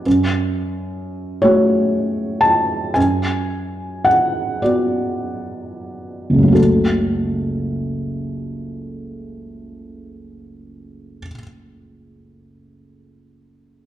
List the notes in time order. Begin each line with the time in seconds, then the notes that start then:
0.06 F#2
1.42 A3 F#4 C#5
2.41 A5
2.94 F#2 G#5
4.04 F#5
4.62 B3 F#4 D5
6.30 F#1
6.34 C#2
6.38 F#3
6.43 A3
6.48 C#4
6.52 F#4 A4